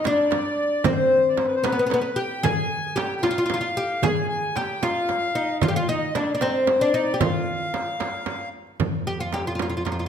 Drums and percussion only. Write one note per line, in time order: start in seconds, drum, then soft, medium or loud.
0.04 darbuka tek medium
0.04 frame drum medium
0.18 darbuka ka soft
0.31 darbuka tek medium
0.31 frame drum medium
0.84 frame drum medium
0.84 darbuka dum medium
1.37 darbuka tek medium
1.37 frame drum medium
1.64 darbuka tek medium
1.64 frame drum medium
1.90 darbuka tek medium
1.90 frame drum medium
2.31 darbuka ka soft
2.44 darbuka dum medium
2.44 frame drum medium
2.97 darbuka tek medium
2.97 frame drum medium
3.24 darbuka tek medium
3.24 frame drum medium
3.37 darbuka ka soft
3.50 darbuka tek medium
3.50 frame drum medium
4.02 darbuka dum medium
4.02 frame drum medium
4.56 darbuka tek medium
4.56 frame drum medium
4.83 darbuka tek medium
4.83 frame drum medium
4.96 darbuka ka soft
5.09 darbuka tek medium
5.09 frame drum medium
5.61 frame drum medium
5.61 darbuka dum medium
6.15 darbuka tek medium
6.15 frame drum medium
6.41 darbuka tek medium
6.41 frame drum medium
6.55 darbuka ka soft
6.67 darbuka tek medium
6.67 frame drum medium
7.21 frame drum medium
7.21 darbuka dum medium
7.47 darbuka ka soft
7.74 darbuka tek medium
7.74 frame drum medium
8.00 darbuka tek medium
8.00 frame drum medium
8.26 darbuka tek medium
8.26 frame drum medium
8.67 darbuka ka soft
8.80 frame drum medium
8.80 darbuka dum medium
9.33 darbuka tek medium
9.33 frame drum medium
9.59 darbuka tek medium
9.59 frame drum medium
9.73 darbuka ka soft
9.87 darbuka tek medium
9.87 frame drum medium